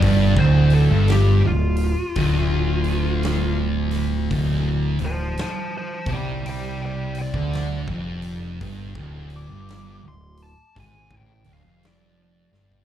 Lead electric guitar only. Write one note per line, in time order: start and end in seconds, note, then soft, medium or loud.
0.04 0.38 D5 medium
0.39 0.73 C5 medium
0.74 1.09 A4 medium
1.11 1.45 G4 medium
1.47 3.56 F4 loud
5.05 5.40 C5 medium
5.05 5.39 A5 medium
5.41 5.73 C5 medium
5.41 5.75 A5 loud
5.78 6.09 C5 medium
5.78 6.11 A5 medium
6.13 6.45 D5 loud
6.13 6.47 G5 loud
6.49 6.81 D5 medium
6.49 6.83 G5 medium
6.86 7.17 D5 medium
6.86 7.19 G5 medium
7.21 7.76 D5 medium
9.36 10.04 D6 loud
10.08 10.41 C6 medium
10.42 10.76 A5 medium
10.80 11.13 G#5 medium
11.17 11.49 G5 medium
11.53 11.85 F5 medium
11.87 12.20 D5 medium
12.22 12.85 D5 loud